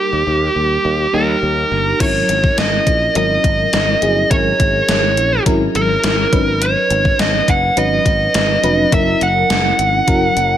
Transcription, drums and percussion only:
2.00 kick loud
2.00 closed hi-hat medium
2.00 crash medium
2.29 closed hi-hat medium
2.44 kick medium
2.58 snare loud
2.58 closed hi-hat medium
2.87 kick medium
2.87 closed hi-hat medium
3.15 closed hi-hat medium
3.44 kick medium
3.44 closed hi-hat medium
3.73 snare loud
3.73 closed hi-hat medium
4.02 closed hi-hat medium
4.31 kick loud
4.31 closed hi-hat medium
4.60 kick medium
4.60 closed hi-hat medium
4.89 snare loud
4.89 closed hi-hat medium
5.17 closed hi-hat medium
5.46 kick medium
5.46 closed hi-hat medium
5.75 closed hi-hat medium
6.04 snare loud
6.04 closed hi-hat medium
6.33 kick loud
6.33 closed hi-hat medium
6.62 closed hi-hat medium
6.90 closed hi-hat medium
7.05 kick medium
7.19 snare loud
7.19 closed hi-hat medium
7.48 kick medium
7.48 closed hi-hat medium
7.77 closed hi-hat medium
8.06 kick medium
8.06 closed hi-hat medium
8.34 snare loud
8.34 closed hi-hat medium
8.64 closed hi-hat medium
8.92 kick loud
8.92 closed hi-hat loud
9.21 closed hi-hat medium
9.50 snare loud
9.50 closed hi-hat medium
9.79 closed hi-hat medium
10.08 kick medium
10.08 closed hi-hat medium
10.37 closed hi-hat medium

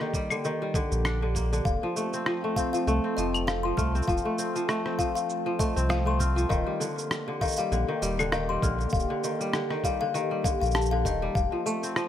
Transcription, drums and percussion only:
0.00 cross-stick soft
0.14 kick medium
0.14 cabasa medium
0.30 cabasa soft
0.30 claves medium
0.44 cabasa soft
0.74 kick medium
0.74 cabasa medium
0.92 cabasa soft
1.05 cross-stick loud
1.05 cabasa soft
1.05 claves medium
1.35 kick medium
1.35 cabasa medium
1.53 cabasa soft
1.65 kick loud
1.65 cabasa soft
1.97 cabasa medium
2.13 cabasa soft
2.26 cross-stick medium
2.56 kick medium
2.56 cabasa medium
2.74 cabasa soft
2.88 cabasa soft
3.18 cabasa medium
3.34 cabasa soft
3.34 claves medium
3.48 cross-stick loud
3.48 cabasa soft
3.78 kick loud
3.78 cabasa medium
3.95 cabasa soft
4.02 cabasa soft
4.08 kick loud
4.08 cabasa soft
4.17 cabasa soft
4.39 cabasa medium
4.56 cabasa soft
4.69 cross-stick medium
4.69 cabasa soft
4.86 cross-stick soft
4.99 kick medium
4.99 cabasa medium
5.16 cabasa soft
5.30 cabasa soft
5.59 kick loud
5.59 cabasa medium
5.77 cabasa soft
5.90 cross-stick loud
5.90 cabasa soft
6.20 kick medium
6.20 cabasa medium
6.38 cabasa soft
6.50 kick loud
6.50 cabasa soft
6.81 cabasa medium
6.98 cabasa soft
7.11 cross-stick loud
7.11 cabasa soft
7.41 kick medium
7.41 cabasa soft
7.45 cabasa soft
7.48 cabasa soft
7.50 cabasa medium
7.52 cabasa medium
7.56 cabasa medium
7.59 cabasa soft
7.72 cabasa soft
8.03 cabasa medium
8.19 cabasa soft
8.19 claves medium
8.32 cross-stick loud
8.32 cabasa soft
8.62 kick loud
8.62 cabasa medium
8.80 cabasa soft
8.89 kick loud
8.89 cabasa soft
8.94 cabasa soft
8.99 cabasa soft
9.24 cabasa medium
9.41 cabasa soft
9.53 cross-stick medium
9.53 cabasa soft
9.71 cross-stick soft
9.84 kick medium
9.84 cabasa medium
10.15 cabasa soft
10.44 kick loud
10.44 cabasa medium
10.62 cabasa soft
10.65 cabasa soft
10.71 cross-stick loud
10.71 cabasa soft
10.75 cabasa soft
10.81 cabasa soft
10.86 cabasa soft
11.05 kick medium
11.05 cabasa medium
11.35 kick loud
11.35 cabasa soft
11.67 cabasa medium
11.83 cabasa soft
11.96 cross-stick medium
11.96 cabasa soft

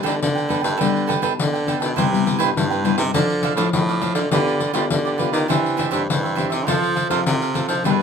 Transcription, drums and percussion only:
0.06 pandeiro medium
0.23 pandeiro medium
0.38 pandeiro soft
0.50 pandeiro soft
0.64 pandeiro medium
0.81 pandeiro medium
0.96 pandeiro soft
1.10 pandeiro medium
1.23 pandeiro medium
1.39 pandeiro medium
1.55 pandeiro soft
1.68 pandeiro soft
1.82 pandeiro medium
1.98 pandeiro medium
2.14 pandeiro soft
2.27 pandeiro medium
2.40 pandeiro medium
2.57 pandeiro medium
2.72 pandeiro soft
2.85 pandeiro medium
2.98 pandeiro medium
3.14 pandeiro medium
3.30 pandeiro soft
3.43 pandeiro medium
3.57 pandeiro medium
3.73 pandeiro medium
3.89 pandeiro soft
4.01 pandeiro soft
4.15 pandeiro medium
4.32 pandeiro medium
4.48 pandeiro soft
4.60 pandeiro medium
4.75 pandeiro medium
4.90 pandeiro medium
5.07 pandeiro soft
5.19 pandeiro soft
5.34 pandeiro medium
5.50 pandeiro medium
5.66 pandeiro soft
5.79 pandeiro medium
5.93 pandeiro medium
6.10 pandeiro medium
6.26 pandeiro soft
6.38 pandeiro medium
6.52 pandeiro medium
6.68 pandeiro medium
6.83 pandeiro soft
6.97 pandeiro medium
7.10 pandeiro medium
7.26 pandeiro medium
7.42 pandeiro soft
7.55 pandeiro medium
7.69 pandeiro medium
7.85 pandeiro medium

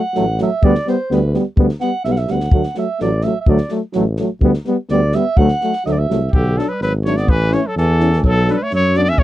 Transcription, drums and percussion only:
0.15 snare soft
0.38 snare soft
0.63 kick loud
0.75 snare soft
0.87 snare soft
1.11 snare soft
1.34 snare soft
1.57 kick medium
1.69 snare soft
1.80 snare soft
2.04 snare soft
2.16 snare soft
2.28 snare soft
2.40 snare soft
2.51 kick loud
2.63 snare soft
2.75 snare soft
3.00 snare soft
3.21 snare soft
3.46 kick medium
3.58 snare soft
3.69 snare soft
3.93 snare soft
4.17 snare soft
4.41 kick medium
4.54 snare soft
4.65 snare soft
4.89 snare soft
5.12 snare soft
5.37 kick medium
5.48 snare soft
5.61 snare soft
5.73 snare soft
5.86 snare soft
6.11 snare soft
6.33 kick medium
6.59 snare soft
6.82 snare soft
7.06 snare soft
7.17 snare soft
7.28 kick medium
7.52 snare soft
7.77 snare soft
8.00 snare soft
8.13 snare soft
8.24 kick medium
8.48 snare soft
8.71 snare soft
8.94 snare soft
9.06 snare soft
9.18 kick medium

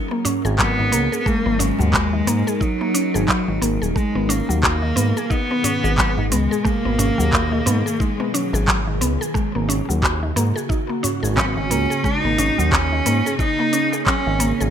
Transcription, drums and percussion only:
0.11 darbuka ka medium
0.25 open hi-hat medium
0.25 darbuka dum medium
0.25 shaker medium
0.45 darbuka ka soft
0.45 shaker soft
0.59 kick loud
0.59 clap loud
0.59 shaker soft
0.80 darbuka dum medium
0.93 open hi-hat loud
0.93 shaker medium
1.13 shaker soft
1.26 kick loud
1.26 shaker soft
1.60 open hi-hat medium
1.60 darbuka ka medium
1.60 darbuka dum medium
1.60 shaker medium
1.79 darbuka tek medium
1.79 darbuka dum medium
1.79 shaker soft
1.94 kick loud
1.94 clap loud
1.94 shaker soft
2.27 open hi-hat loud
2.27 darbuka dum medium
2.27 shaker medium
2.47 darbuka ka medium
2.47 shaker soft
2.61 kick loud
2.61 shaker soft
2.81 darbuka tek medium
2.95 open hi-hat medium
2.95 shaker medium
3.15 darbuka tek medium
3.15 shaker soft
3.28 kick loud
3.28 clap loud
3.28 shaker soft
3.62 open hi-hat loud
3.62 darbuka tek soft
3.62 shaker medium
3.83 shaker soft
3.96 kick loud
3.96 shaker soft
4.30 open hi-hat loud
4.30 darbuka ka medium
4.30 shaker medium
4.50 shaker soft
4.63 kick loud
4.63 clap loud
4.63 shaker soft
4.97 open hi-hat medium
4.97 shaker medium
5.17 darbuka ka soft
5.17 shaker soft
5.31 kick loud
5.31 shaker soft
5.51 darbuka ka medium
5.64 open hi-hat medium
5.64 darbuka dum medium
5.64 shaker medium
5.84 darbuka ka medium
5.84 shaker soft
5.98 kick loud
5.98 clap loud
5.98 shaker soft
6.18 darbuka dum loud
6.32 open hi-hat loud
6.32 shaker medium
6.53 shaker soft
6.65 kick loud
6.65 shaker soft
6.99 open hi-hat medium
6.99 darbuka ka medium
6.99 darbuka dum medium
6.99 shaker medium
7.20 shaker soft
7.33 kick loud
7.33 clap loud
7.33 shaker soft
7.67 open hi-hat medium
7.67 darbuka dum loud
7.67 shaker medium
7.86 darbuka ka medium
7.86 shaker soft
8.00 kick loud
8.00 shaker soft
8.20 darbuka tek medium
8.35 open hi-hat medium
8.35 shaker medium
8.53 darbuka tek medium
8.53 shaker soft
8.68 kick loud
8.68 clap loud
8.68 shaker soft
9.02 open hi-hat loud
9.02 shaker medium
9.22 shaker soft
9.35 kick loud
9.35 shaker soft
9.69 open hi-hat medium
9.69 darbuka ka medium
9.69 shaker medium
9.90 shaker soft
10.02 kick loud
10.02 clap loud
10.02 shaker soft
10.37 open hi-hat medium
10.37 shaker medium
10.56 darbuka ka soft
10.56 shaker soft
10.70 kick loud
10.70 shaker soft
10.90 darbuka ka medium
11.04 open hi-hat medium
11.04 darbuka dum medium
11.04 shaker medium
11.24 darbuka ka soft
11.24 shaker soft
11.37 kick loud
11.37 clap loud
11.37 shaker soft
11.57 darbuka dum loud
11.71 open hi-hat medium
11.71 shaker medium
11.92 shaker soft
12.04 kick loud
12.04 shaker soft
12.38 open hi-hat medium
12.38 darbuka ka medium
12.38 darbuka dum medium
12.38 shaker medium
12.59 shaker medium
12.72 kick loud
12.72 clap loud
12.72 shaker soft
13.05 open hi-hat medium
13.05 darbuka dum medium
13.05 shaker medium
13.25 darbuka ka soft
13.25 shaker soft
13.39 kick loud
13.39 shaker soft
13.59 darbuka tek medium
13.73 open hi-hat medium
13.73 shaker medium
13.93 darbuka tek medium
13.93 shaker soft
14.07 kick loud
14.07 clap medium
14.07 shaker soft
14.40 open hi-hat medium
14.40 shaker medium
14.61 shaker soft

